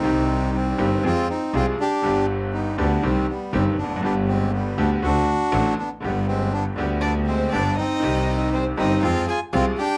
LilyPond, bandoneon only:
\new Staff \with { instrumentName = "Bandoneon" } { \time 4/4 \key c \minor \tempo 4 = 120 <c' ees'>4 <g c'>4 <c' f'>8 <c' ees'>8 <c' f'>8 <d' g'>8~ | <d' g'>8 r8 <b ees'>8 <b d'>8 <g c'>8 <g b>8 <g c'>8 <b d'>8 | <b d'>8 <aes c'>8 <g b>8 <b d'>8 <d' fis'>4. <b d'>8 | <g b>8 <aes c'>8 <b d'>8 <g b>8 <b d'>8 <aes c'>8 <b d'>8 <c' ees'>8~ |
<c' ees'>4 <g c'>8 <c' ees'>8 <c' f'>8 <f' aes'>8 <c' f'>8 <d' g'>8 | }